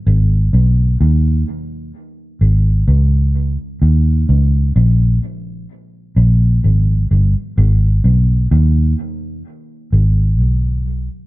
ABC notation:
X:1
M:4/4
L:1/16
Q:"Swing 16ths" 1/4=64
K:Abdor
V:1 name="Fingered electric bass" clef=bass
A,,,2 C,,2 E,,2 z4 A,,,2 D,,3 z | E,,2 D,,2 B,,,2 z4 B,,,2 A,,,2 =G,,, z | A,,,2 C,,2 E,,2 z4 A,,,2 C,,3 z |]